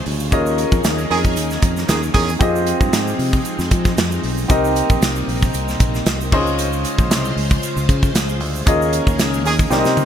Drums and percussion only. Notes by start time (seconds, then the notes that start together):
0.06 open hi-hat
0.20 shaker
0.32 kick, closed hi-hat, shaker
0.46 shaker
0.58 closed hi-hat, shaker
0.72 kick, shaker
0.84 snare, closed hi-hat, shaker
0.98 shaker
1.11 open hi-hat
1.25 kick, shaker
1.36 closed hi-hat, shaker
1.50 snare, shaker
1.62 kick, closed hi-hat, shaker
1.77 snare, shaker
1.89 snare, closed hi-hat, shaker
2.03 shaker
2.14 kick, open hi-hat
2.29 shaker
2.40 kick, closed hi-hat, shaker
2.56 shaker
2.67 closed hi-hat, shaker
2.81 kick, shaker
2.93 snare, closed hi-hat, shaker
3.08 shaker
3.19 open hi-hat
3.33 kick, shaker
3.45 closed hi-hat, shaker
3.59 snare, shaker
3.71 kick, closed hi-hat, shaker
3.85 kick, snare, shaker
3.98 snare, closed hi-hat, shaker
4.12 shaker
4.23 open hi-hat
4.38 shaker
4.50 kick, closed hi-hat, shaker
4.65 shaker
4.76 closed hi-hat, shaker
4.90 kick, shaker
5.02 snare, closed hi-hat, shaker
5.16 shaker
5.29 open hi-hat
5.42 kick, shaker
5.54 closed hi-hat, shaker
5.68 snare, shaker
5.80 kick, closed hi-hat, shaker
5.95 snare, shaker
6.06 snare, closed hi-hat, shaker
6.21 shaker
6.32 kick, crash
6.47 shaker
6.59 closed hi-hat, shaker
6.73 shaker
6.85 closed hi-hat, shaker
6.99 kick, shaker
7.11 snare, closed hi-hat, shaker
7.25 shaker
7.37 open hi-hat
7.51 kick, shaker
7.63 closed hi-hat, shaker
7.77 shaker
7.89 kick, closed hi-hat, shaker
8.03 kick, shaker
8.15 snare, closed hi-hat, shaker
8.29 shaker
8.40 open hi-hat
8.55 shaker
8.67 kick, closed hi-hat, shaker
8.82 shaker
8.93 closed hi-hat, shaker
9.07 kick, shaker
9.19 snare, closed hi-hat, shaker
9.34 shaker
9.45 open hi-hat, shaker
9.59 kick, shaker
9.71 snare, shaker
9.85 snare, shaker
9.97 high tom, shaker